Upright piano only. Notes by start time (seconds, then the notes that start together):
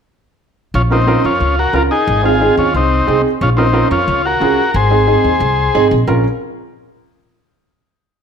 0.90 C#4 F4 A#4
1.07 C#4 F4 A#4
1.74 C#4 F4 A#4
2.23 C4 D#4 G#4
2.41 C4 D#4 G#4
3.07 C4 D#4 G#4
3.57 C#4 F4 A#4
3.73 C#4 F4 A#4
4.40 C#4 F4 G#4
4.90 C4 D#4 G#4
5.07 C4 D#4 G#4
5.75 C4 D#4 G#4
6.08 C#4 F4 A#4